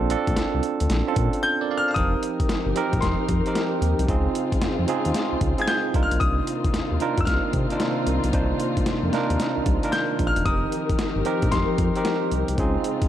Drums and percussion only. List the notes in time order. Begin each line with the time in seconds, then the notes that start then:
0.10 closed hi-hat
0.27 kick, closed hi-hat
0.37 snare, closed hi-hat
0.63 closed hi-hat
0.80 closed hi-hat
0.90 snare, closed hi-hat
1.16 kick, closed hi-hat
1.33 closed hi-hat
1.96 kick, closed hi-hat
2.23 closed hi-hat
2.40 kick, closed hi-hat
2.49 snare, closed hi-hat
2.76 closed hi-hat
2.93 kick, closed hi-hat
3.02 kick, snare, closed hi-hat
3.29 kick, closed hi-hat
3.46 closed hi-hat
3.55 snare, closed hi-hat
3.82 closed hi-hat
3.99 closed hi-hat
4.09 kick, closed hi-hat
4.35 closed hi-hat
4.52 kick, closed hi-hat
4.62 snare, closed hi-hat
4.88 closed hi-hat
5.05 closed hi-hat
5.14 snare, closed hi-hat
5.41 kick, closed hi-hat
5.58 closed hi-hat
5.68 snare, closed hi-hat
5.94 kick, closed hi-hat
6.11 closed hi-hat
6.21 kick, closed hi-hat
6.47 closed hi-hat
6.64 kick, closed hi-hat
6.74 snare, closed hi-hat
7.00 closed hi-hat
7.17 kick, closed hi-hat
7.27 kick, snare, closed hi-hat
7.53 kick, closed hi-hat
7.70 closed hi-hat
7.80 snare, closed hi-hat
8.07 closed hi-hat
8.24 closed hi-hat
8.33 kick, closed hi-hat
8.60 closed hi-hat
8.77 kick, closed hi-hat
8.86 snare, closed hi-hat
9.13 snare, closed hi-hat
9.30 closed hi-hat
9.40 snare, closed hi-hat
9.66 kick, closed hi-hat
9.83 closed hi-hat
9.93 snare, closed hi-hat
10.19 kick, closed hi-hat
10.36 closed hi-hat
10.46 kick, closed hi-hat
10.72 closed hi-hat
10.90 kick, closed hi-hat
10.99 snare, closed hi-hat
11.25 closed hi-hat
11.42 kick, closed hi-hat
11.52 kick, snare, closed hi-hat
11.78 kick, closed hi-hat
11.96 closed hi-hat
12.05 snare, closed hi-hat
12.32 closed hi-hat
12.48 closed hi-hat
12.58 kick, closed hi-hat
12.84 closed hi-hat
13.02 kick, closed hi-hat